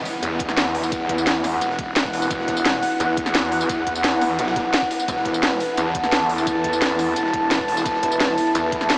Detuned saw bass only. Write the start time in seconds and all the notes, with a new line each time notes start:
0.23 E2
1.61 E1
2.13 E1
2.31 E1
3.00 E2
4.39 B1
5.08 E1
5.78 E2
7.16 E1
7.68 E1
7.86 E1
8.55 E2